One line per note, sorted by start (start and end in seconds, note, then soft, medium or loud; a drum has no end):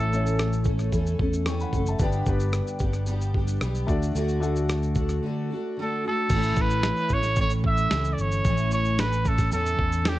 0.00 0.89 A1 loud
0.00 0.66 A2 medium
0.00 0.66 E3 medium
0.00 0.12 A3 medium
0.00 0.66 A3 medium
0.00 0.13 C#4 medium
0.00 0.65 C#4 medium
0.00 0.13 E4 medium
0.00 2.01 G4 medium
0.00 0.63 A4 medium
0.00 0.65 A4 medium
0.00 1.89 E5 medium
0.12 1.05 A3 medium
0.12 1.06 C#4 medium
0.12 1.06 E4 medium
0.12 1.07 C#5 medium
0.12 shaker soft
0.26 shaker soft
0.39 cross-stick loud
0.39 shaker medium
0.53 shaker soft
0.65 0.93 C#4 medium
0.65 0.92 A4 medium
0.65 kick medium
0.65 shaker soft
0.69 0.91 A3 medium
0.79 cross-stick soft
0.79 shaker medium
0.92 1.15 E2 medium
0.92 1.19 E3 medium
0.92 1.19 A3 medium
0.92 1.19 C#4 medium
0.92 1.18 A4 medium
0.92 kick medium
0.92 shaker medium
1.06 shaker medium
1.19 1.63 E2 medium
1.19 1.46 A3 soft
1.19 1.46 C#4 medium
1.19 1.46 A4 medium
1.19 kick medium
1.33 shaker medium
1.46 1.73 E3 medium
1.46 1.74 A3 medium
1.46 1.74 C#4 medium
1.46 1.73 A4 medium
1.46 1.60 G5 medium
1.46 1.59 C#6 medium
1.46 cross-stick loud
1.46 shaker medium
1.60 1.86 F#5 medium
1.60 1.86 B5 medium
1.60 shaker soft
1.73 1.95 F#1 medium
1.73 2.02 C#4 medium
1.73 2.01 A4 medium
1.73 kick medium
1.73 shaker soft
1.77 2.01 A3 soft
1.86 2.13 E5 medium
1.86 2.13 A5 medium
1.86 shaker medium
1.99 2.22 G1 loud
1.99 2.81 G2 medium
1.99 4.15 D3 medium
1.99 2.82 G3 medium
1.99 2.23 B3 medium
1.99 2.81 B3 medium
1.99 2.24 D4 medium
1.99 2.81 D4 medium
1.99 2.24 G4 medium
1.99 2.79 G4 medium
1.99 2.24 D5 medium
1.99 kick loud
1.99 shaker medium
2.12 shaker soft
2.26 2.60 G1 loud
2.26 3.20 B3 medium
2.26 3.20 D4 medium
2.26 3.21 G4 medium
2.26 3.21 B4 loud
2.26 kick medium
2.26 shaker soft
2.40 shaker soft
2.53 cross-stick loud
2.53 shaker medium
2.67 shaker soft
2.79 3.57 G1 medium
2.79 3.06 B3 soft
2.79 3.08 D4 medium
2.79 3.07 G4 medium
2.79 kick medium
2.79 shaker medium
2.84 3.06 G3 soft
2.93 cross-stick soft
2.93 shaker soft
3.06 3.34 G3 medium
3.06 3.35 B3 medium
3.06 3.35 D4 medium
3.06 3.34 G4 medium
3.06 shaker medium
3.21 shaker medium
3.34 3.61 B3 medium
3.34 3.62 D4 medium
3.34 3.62 G4 medium
3.34 kick medium
3.38 3.60 G3 medium
3.47 shaker medium
3.61 3.84 B1 medium
3.61 3.88 G3 medium
3.61 3.89 B3 medium
3.61 3.88 D4 medium
3.61 3.87 G4 medium
3.61 cross-stick loud
3.61 shaker medium
3.75 shaker soft
3.86 4.10 D2 medium
3.86 4.34 A3 medium
3.86 4.34 D4 medium
3.86 4.16 D4 medium
3.86 4.15 F#4 medium
3.86 4.35 F#4 medium
3.86 4.35 D5 loud
3.86 kick loud
3.86 shaker soft
3.91 4.15 A3 soft
4.03 shaker soft
4.15 5.19 D2 loud
4.15 4.96 D3 medium
4.15 4.98 A3 medium
4.15 4.95 D4 medium
4.15 4.93 F#4 medium
4.15 shaker medium
4.29 shaker soft
4.40 5.34 A3 medium
4.40 5.34 D4 medium
4.40 5.35 F#4 medium
4.40 5.35 A4 loud
4.40 shaker soft
4.56 shaker soft
4.69 cross-stick loud
4.69 shaker medium
4.83 shaker soft
4.94 5.22 A3 soft
4.94 5.23 D4 soft
4.94 5.22 F#4 medium
4.94 kick medium
4.94 shaker medium
5.09 cross-stick soft
5.09 shaker medium
5.23 5.50 D3 medium
5.23 5.50 A3 medium
5.23 5.50 D4 medium
5.23 5.49 F#4 medium
5.50 5.78 A3 soft
5.50 5.78 D4 medium
5.50 5.77 F#4 medium
5.77 6.03 D3 medium
5.77 6.05 A3 medium
5.77 6.05 D4 medium
5.77 6.03 F#4 medium
5.81 6.04 A4 medium
6.05 6.32 A3 soft
6.05 6.32 D4 medium
6.05 6.31 F#4 medium
6.05 6.63 A4 medium
6.30 6.52 A1 loud
6.30 6.85 A2 medium
6.30 6.82 E3 medium
6.30 6.84 A3 medium
6.30 6.86 C#4 medium
6.30 kick loud
6.30 crash medium
6.30 shaker medium
6.35 6.86 E4 medium
6.43 shaker soft
6.56 6.90 A1 medium
6.56 kick medium
6.56 shaker medium
6.61 7.15 B4 loud
6.70 shaker soft
6.83 7.11 E3 medium
6.83 7.11 A3 medium
6.83 7.12 C#4 medium
6.83 7.10 E4 medium
6.83 snare loud
6.83 shaker medium
6.97 shaker soft
7.09 7.87 A1 medium
7.09 7.38 E4 soft
7.09 kick loud
7.09 shaker medium
7.13 7.38 A3 soft
7.13 7.39 C#4 soft
7.13 7.39 C#5 loud
7.23 snare soft
7.23 shaker medium
7.36 7.92 A2 medium
7.36 7.90 E3 medium
7.36 7.92 A3 medium
7.36 7.92 C#4 medium
7.36 kick medium
7.36 shaker medium
7.41 7.93 E4 medium
7.41 7.52 C#5 loud
7.50 shaker medium
7.64 8.14 E5 loud
7.64 kick medium
7.77 shaker medium
7.91 8.14 C#2 medium
7.91 8.45 E3 medium
7.91 8.45 A3 medium
7.91 8.45 C#4 medium
7.91 snare loud
7.91 shaker medium
7.95 8.46 E4 medium
8.04 shaker soft
8.13 8.22 D5 medium
8.18 8.40 G1 medium
8.18 8.72 C#5 loud
8.18 shaker soft
8.31 shaker medium
8.45 9.48 A1 loud
8.45 8.99 A2 medium
8.45 8.97 E3 medium
8.45 8.98 A3 medium
8.45 8.99 C#4 medium
8.45 9.00 E4 medium
8.45 kick loud
8.45 shaker medium
8.57 shaker soft
8.71 9.01 C#5 loud
8.71 shaker medium
8.85 shaker soft
8.98 9.25 E3 medium
8.98 9.26 A3 medium
8.98 9.25 C#4 medium
8.98 9.23 E4 medium
8.98 9.29 B4 medium
8.98 snare loud
8.98 shaker medium
9.12 shaker soft
9.24 9.51 A3 soft
9.24 9.51 C#4 soft
9.24 9.51 E4 medium
9.24 9.52 A4 medium
9.24 kick loud
9.24 shaker medium
9.38 kick medium
9.38 snare soft
9.38 shaker medium
9.50 9.74 E2 medium
9.50 10.05 A2 medium
9.50 10.04 E3 medium
9.50 10.05 A3 medium
9.50 10.06 C#4 medium
9.50 10.06 E4 medium
9.50 10.10 A4 loud
9.50 shaker medium
9.66 shaker medium
9.79 10.19 E2 medium
9.79 kick medium
9.92 shaker medium
10.05 10.19 E3 medium
10.05 10.19 A3 medium
10.05 10.19 C#4 medium
10.05 10.19 E4 medium
10.05 10.19 G4 medium
10.05 snare loud
10.05 shaker medium